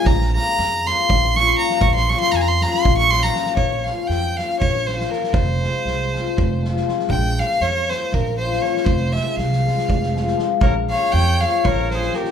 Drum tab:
SD |-oo-o-o---o--o|-oooo-oo-ooooo|--o-o-o---oooo|--o-o-o---oooo|
BD |o-------o-----|o-------o-----|o-------o-----|o-------o-----|

SD |--o-o-o----ooo|--o-oooo-oooo-|--o-o-o---oooo|
BD |o-------o-----|o-------o-----|o-------o-----|